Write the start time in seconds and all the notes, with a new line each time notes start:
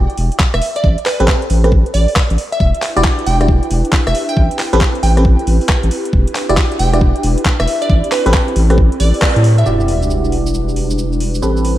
Already playing: G5
0.10 closed hi-hat
0.17 E1, open hi-hat
0.32 closed hi-hat
0.40 kick, clap
0.54 E1 E5, cross-stick, closed hi-hat
0.62 open hi-hat
0.76 D5, closed hi-hat
0.84 A1 D5, kick
0.98 closed hi-hat
1.06 B4, cross-stick, clap, open hi-hat
1.20 A1 C4 G4 A4 B4, closed hi-hat
1.28 kick, clap
1.42 closed hi-hat
1.50 A1, open hi-hat
1.64 C4 G4 A4 B4, cross-stick, closed hi-hat
1.72 kick
1.86 closed hi-hat
1.94 A1 D5, open hi-hat
2.08 open hi-hat
2.16 kick, cross-stick, clap
2.30 A1, closed hi-hat
2.38 open hi-hat
2.52 E5, closed hi-hat
2.60 E1 D4 E4 G4 B4 E5, kick
2.74 closed hi-hat
2.82 clap, open hi-hat
2.96 E1 E4 F#4 G4 D5, closed hi-hat
3.04 kick, clap
3.19 closed hi-hat
3.26 E1 G5, open hi-hat
3.41 E4 F#4 G4 D5, cross-stick, closed hi-hat
3.48 kick
3.63 closed hi-hat
3.70 E1, open hi-hat
3.85 closed hi-hat
3.93 kick, clap
4.07 E1 E5, cross-stick, closed hi-hat
4.15 open hi-hat
4.29 G5, closed hi-hat
4.37 A1 C4 E4, kick
4.51 closed hi-hat
4.59 cross-stick, clap, open hi-hat
4.73 A1 C4 G4 A4 B4, closed hi-hat
4.81 kick, clap
4.95 closed hi-hat
5.03 A1 G5, open hi-hat
5.17 C4 G4 A4 B4, cross-stick, closed hi-hat
5.25 kick
5.39 closed hi-hat
5.47 A1, open hi-hat
5.61 open hi-hat
5.69 kick, cross-stick, clap
5.83 A1, closed hi-hat
5.91 open hi-hat
6.05 closed hi-hat
6.13 E1 D4 E4, kick
6.27 closed hi-hat
6.35 clap, open hi-hat
6.49 E1 E4 F#4 G4 D5, closed hi-hat
6.57 kick, clap
6.72 closed hi-hat
6.79 E1 G5, open hi-hat
6.93 E4 F#4 G4 D5, cross-stick, closed hi-hat
7.01 kick
7.16 closed hi-hat
7.23 E1, open hi-hat
7.38 closed hi-hat
7.45 kick, clap
7.60 E1 E5, cross-stick, closed hi-hat
7.68 open hi-hat
7.82 D5, closed hi-hat
7.89 A1 C4 E4 G4 D5, kick
8.04 closed hi-hat
8.12 B4, cross-stick, clap, open hi-hat
8.26 A1 C4 G4 A4 B4, closed hi-hat
8.34 kick, clap
8.48 closed hi-hat
8.56 A1, open hi-hat
8.70 C4 G4 A4 B4, cross-stick, closed hi-hat
8.78 kick
8.92 closed hi-hat
9.00 A1 D5, open hi-hat
9.14 open hi-hat
9.22 kick, cross-stick, clap
9.36 A2, closed hi-hat
9.44 open hi-hat
9.58 E5, closed hi-hat
9.66 E1 G3 D4 E4 F#4 G4 B4 D5 E5 F#5, sub drop, shaker
9.80 shaker
9.88 open hi-hat
10.02 shaker
10.10 shaker
10.24 shaker
10.32 open hi-hat
10.46 shaker
10.54 shaker
10.69 shaker
10.76 open hi-hat
10.91 shaker
10.98 shaker
11.13 shaker
11.20 open hi-hat
11.35 shaker
11.42 A1 C4 E4 G4 A4 B4, shaker
11.57 shaker
11.65 open hi-hat